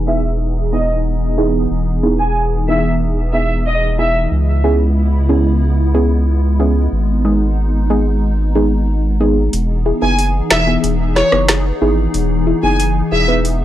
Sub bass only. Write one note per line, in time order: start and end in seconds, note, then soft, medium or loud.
0.00 1.67 E1 medium
1.71 4.28 E1 medium
4.31 6.88 C#2 medium
6.92 9.49 G#1 medium
9.53 9.93 E1 loud
10.02 10.42 F#1 medium
10.51 10.77 E1 medium
10.84 11.23 E1 loud
11.32 11.72 F#1 medium
11.82 12.08 G#1 medium
12.14 12.54 E1 loud
12.63 13.02 F#1 medium
13.12 13.65 E1 medium